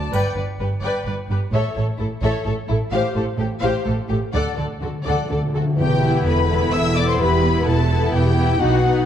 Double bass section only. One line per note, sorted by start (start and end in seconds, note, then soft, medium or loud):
0.11 0.19 G1 soft
0.35 0.43 G1 soft
0.59 0.67 G1 soft
0.82 0.90 G1 soft
1.05 1.13 G1 soft
1.29 1.37 G1 soft
1.53 1.61 A1 soft
1.76 1.84 A1 soft
1.98 2.06 A1 soft
2.22 2.30 A1 medium
2.45 2.53 A1 soft
2.69 2.77 A1 soft
2.92 3.00 A1 medium
3.16 3.24 A1 soft
3.39 3.47 A1 soft
3.63 3.71 A1 medium
3.87 3.95 A1 soft
4.10 4.18 A1 soft
4.35 4.43 D2 medium
4.59 4.67 D2 soft
4.82 4.90 D2 soft
5.07 5.15 D2 soft
5.30 5.38 D2 soft
5.55 5.63 D2 soft
5.80 6.21 E1 medium
6.27 6.68 E1 medium
6.74 7.15 E1 medium
7.20 7.61 E1 medium
7.66 8.07 E1 medium
8.13 8.55 E1 medium
8.61 9.02 B1 medium